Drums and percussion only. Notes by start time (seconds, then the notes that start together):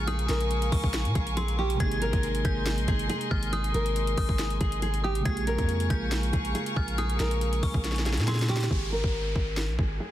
0.07 closed hi-hat
0.19 closed hi-hat
0.29 snare, closed hi-hat
0.41 closed hi-hat
0.51 closed hi-hat
0.62 closed hi-hat
0.72 kick, open hi-hat
0.84 kick
0.94 snare, closed hi-hat
1.05 closed hi-hat
1.15 kick, closed hi-hat
1.27 closed hi-hat
1.37 closed hi-hat
1.48 closed hi-hat
1.70 closed hi-hat
1.80 kick, closed hi-hat
1.92 closed hi-hat
2.02 closed hi-hat
2.13 kick, closed hi-hat
2.23 closed hi-hat
2.35 closed hi-hat
2.45 kick, closed hi-hat
2.66 snare, closed hi-hat
2.78 closed hi-hat
2.88 kick, closed hi-hat
2.99 closed hi-hat
3.10 closed hi-hat
3.21 closed hi-hat
3.31 kick
3.43 closed hi-hat
3.53 closed hi-hat
3.64 closed hi-hat
3.74 closed hi-hat
3.86 closed hi-hat
3.96 closed hi-hat
4.07 closed hi-hat
4.17 kick, open hi-hat
4.29 kick
4.39 snare, closed hi-hat
4.51 closed hi-hat
4.61 kick, closed hi-hat
4.72 closed hi-hat
4.82 closed hi-hat
4.94 closed hi-hat
5.15 closed hi-hat
5.25 kick, closed hi-hat
5.37 closed hi-hat
5.47 closed hi-hat
5.58 kick, closed hi-hat
5.69 closed hi-hat
5.80 closed hi-hat
5.90 kick, closed hi-hat
6.12 snare, closed hi-hat
6.23 closed hi-hat
6.33 kick, closed hi-hat
6.45 closed hi-hat
6.55 closed hi-hat
6.66 closed hi-hat
6.77 kick
6.88 closed hi-hat
6.98 closed hi-hat
7.10 closed hi-hat
7.20 snare, closed hi-hat
7.31 closed hi-hat
7.41 closed hi-hat
7.53 closed hi-hat
7.63 kick, open hi-hat
7.74 kick
7.84 snare, closed hi-hat
7.92 snare
7.96 snare, closed hi-hat
8.06 snare, closed hi-hat
8.13 snare
8.18 snare, closed hi-hat
8.28 snare, closed hi-hat
8.35 snare
8.39 snare, closed hi-hat
8.49 snare
8.56 snare
8.61 snare, closed hi-hat
8.71 kick
9.04 kick
9.36 kick
9.57 snare
9.79 kick